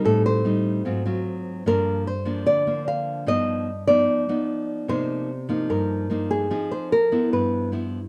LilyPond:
<<
  \new Staff \with { instrumentName = "Nylon-string guitar" } { \time 4/4 \key g \phrygian \tempo 4 = 148 a'8 c''2 r4. | bes'4 c''4 d''4 f''4 | ees''4. d''2 r8 | c''4. r8 bes'4. aes'8~ |
aes'8 c''8 bes'4 b'4 r4 | }
  \new Staff \with { instrumentName = "Nylon-string guitar" } { \time 4/4 \key g \phrygian << { <g c' ees'>4 <g c' ees'>4 <ges c' f'>8 <ges c' f'>4. | <f bes d'>4 r8 <f bes d'>4 <f bes d'>4. | <f b ees'>4 r8 <f b ees'>4 <f b ees'>4. | <f bes ees'>4 r8 <f bes ees'>4. <f bes ees'>4 |
<c' ees' aes'>4 r8 <f ces' fes'>4. <f b e'>8 r8 | } \\ { a,2 aes,2 | g,2 d2 | g,2 r2 | c2 g,2 |
f2 g,2 | } >> }
>>